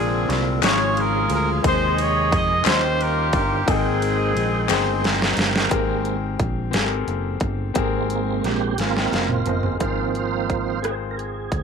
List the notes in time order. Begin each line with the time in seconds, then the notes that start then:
Already playing: A#1 A#2 C3 D3 G#3 A#3 C4 D4 F4 G#4 A#4
0.29 C2, snare, ride
0.61 G#1 G#2 C#3 F3 G#3 C#4 F4 G#4 C5 C#5, snare, clap, ride
0.71 C#5
0.97 A#4, ride
1.30 D2 A#4, ride
1.63 D#2 C3 D#3 G#3 D#4 G#4 C6, kick, ride
1.67 D#4 C5
1.98 C#5, ride
2.32 F2 D#5, kick, ride
2.65 D#2 D#3 G3 C#4 D#4 F4 G4 C5, snare, clap, ride
3.00 A#4, ride
3.33 G1 A#4, kick, ride
3.66 G#1 G#2 G#3 A#3 C4 D#4 G#4 A4 G5, kick, ride
3.76 A#4
4.02 ride
4.36 A#1, ride
4.69 G1 C4 D#4 G#4 C5 G5, snare, clap, ride
5.04 snare, ride
5.22 snare
5.37 G1, snare, ride
5.56 snare
5.70 G#1 G#2 G#3 A#3 C4 G4 G#4 A#4, kick, closed hi-hat
6.05 closed hi-hat
6.39 A#1, kick, closed hi-hat
6.71 G#1 C4 G4 G#4 A4, snare, closed hi-hat
6.81 A#4
7.07 F#1, closed hi-hat
7.40 G1, kick, closed hi-hat
7.74 G#1 G#2 G#3 A#3 C4 G4 G#4 A#4, kick, closed hi-hat
8.10 closed hi-hat
8.44 A#1 G4, snare, closed hi-hat
8.78 G#1 A#3 C4 F4 F5 G#5, snare, closed hi-hat
8.97 D#5 G5, snare
9.12 F#1 F5, snare, closed hi-hat
9.29 mid tom
9.46 G1 C5 D#5, closed hi-hat, floor tom
9.63 G#4 C5, floor tom
9.79 G#1 G#2 F3 A#3 C4 D#4 F4 G#4 A#4 C5, kick, closed hi-hat
10.15 closed hi-hat
10.50 kick, closed hi-hat
10.82 C4 F4 G#4 A#4, cross-stick, closed hi-hat
10.91 C5
11.11 A#4
11.17 G#4, closed hi-hat
11.52 D2 G#4, kick, closed hi-hat